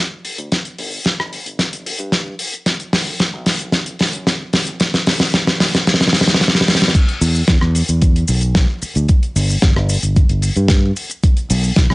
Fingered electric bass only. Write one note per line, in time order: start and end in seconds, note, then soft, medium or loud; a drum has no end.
0.25 muted fingered electric bass stroke soft
0.39 0.48 D2 medium
0.79 0.98 G1 medium
1.06 1.16 G1 medium
1.19 1.38 G1 medium
1.46 1.65 G1 medium
1.72 1.92 G1 medium
1.99 2.34 G2 medium
2.93 3.13 B1 loud
3.20 3.30 B1 medium
3.33 3.53 B1 medium
3.60 3.95 B1 medium
4.00 4.35 F#2 loud
4.67 4.77 A1 medium
5.07 5.27 A1 loud
5.34 5.44 A1 medium
5.48 5.67 A1 medium
7.21 7.41 E2 loud
7.49 7.58 E2 medium
7.62 7.81 E2 loud
7.89 8.23 E2 medium
8.29 8.63 B1 loud
8.82 muted fingered electric bass stroke soft
8.96 9.06 D2 medium
9.36 9.56 G1 loud
9.63 9.73 G1 medium
9.76 9.96 G1 loud
10.03 10.22 G1 medium
10.30 10.49 G1 medium
10.56 10.91 G2 medium
11.50 11.70 B1 loud
11.77 11.87 B1 medium
11.91 11.95 B1 loud